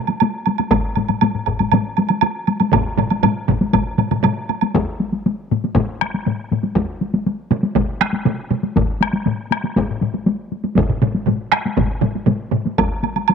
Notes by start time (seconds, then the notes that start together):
0.07 taiko high, high woodblock
0.20 taiko high, high woodblock
0.46 taiko high, high woodblock
0.58 taiko high, high woodblock
0.71 taiko, taiko low-mid, taiko high, high woodblock
0.96 taiko low-mid, taiko high, high woodblock
1.09 taiko low-mid, taiko high, high woodblock
1.21 taiko low-mid, taiko high, high woodblock
1.35 taiko low-mid
1.46 taiko, taiko low-mid, high woodblock
1.59 taiko low-mid, taiko high, high woodblock
1.72 taiko low-mid, taiko high, high woodblock
1.97 taiko high, high woodblock
2.09 taiko high, high woodblock
2.21 taiko high, high woodblock
2.47 taiko high, high woodblock
2.60 taiko high, high woodblock
2.73 taiko, taiko low-mid, taiko mid, taiko high, high woodblock
2.98 taiko low-mid, taiko mid, taiko high, high woodblock
3.10 taiko high, high woodblock
3.23 taiko low-mid, taiko mid, taiko high, high woodblock
3.48 taiko, taiko low-mid, taiko mid, taiko high, high woodblock
3.61 taiko high
3.73 taiko, taiko low-mid, taiko mid, taiko high, high woodblock
3.98 taiko low-mid, taiko mid, taiko high, high woodblock
4.11 taiko low-mid, taiko mid, taiko high, high woodblock
4.23 taiko low-mid, taiko mid, taiko high, high woodblock
4.49 taiko high, high woodblock
4.61 taiko high, high woodblock
4.74 taiko, taiko high
5.00 taiko high
5.13 taiko high
5.26 taiko high
5.51 taiko low-mid, taiko high
5.64 taiko high
5.75 taiko, taiko low-mid, taiko high
6.01 taiko rim, taiko high
6.14 taiko high
6.26 taiko low-mid, taiko high
6.51 taiko low-mid, taiko high
6.63 taiko high
6.75 taiko, taiko high
7.01 taiko high
7.14 taiko high
7.26 taiko high
7.51 taiko mid, taiko high
7.63 taiko high
7.76 taiko, taiko mid, taiko high
8.01 taiko rim, taiko high
8.13 taiko high
8.25 taiko mid, taiko high
8.51 taiko mid, taiko high
8.63 taiko high
8.76 taiko, taiko low-mid, taiko high
9.01 taiko rim, taiko high
9.13 taiko high
9.26 taiko low-mid, taiko high
9.51 taiko rim, taiko high
9.64 taiko high
9.76 taiko, taiko low-mid, taiko high
9.91 taiko low-mid
10.01 taiko low-mid, taiko high
10.14 taiko high
10.26 taiko high
10.52 taiko high
10.64 taiko high
10.76 taiko, taiko low-mid, taiko mid, taiko high
10.89 taiko low-mid, taiko mid
11.02 taiko low-mid, taiko mid, taiko high
11.15 taiko high
11.26 taiko low-mid, taiko mid, taiko high
11.52 taiko rim, taiko high
11.53 taiko rim
11.65 taiko high
11.77 taiko, taiko low-mid, taiko mid, taiko high
12.01 taiko low-mid, taiko mid, taiko high
12.15 taiko high
12.26 taiko low-mid, taiko mid, taiko high
12.51 taiko low-mid, taiko mid, taiko high
12.65 taiko high
12.78 taiko, taiko high, high woodblock
13.03 taiko high, high woodblock
13.16 taiko high, high woodblock
13.28 taiko high, high woodblock